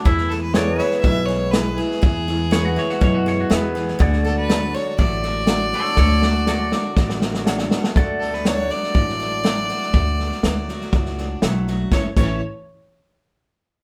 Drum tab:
CC |----------------|----------------|----------------|----------------|
HH |----p-------p---|----p-------p---|----p-------p---|----p-------p---|
SD |ooo-o-ooo-o-o-oo|o-o-o-ooo-o-o-oo|ooo-o-o-o-o-o-oo|o-o-o-o-oooooooo|
BD |o-------o-------|o-------o-------|o-------o-------|o-------o-------|

CC |----------------|----------------|--x-------------|
HH |----p-------p---|----p-------p---|----------------|
SD |o-ooo-ooooo-o-oo|o-ooo-ooooo-o-o-|o---------------|
BD |o-------o-------|o-------o-------|o-o-------------|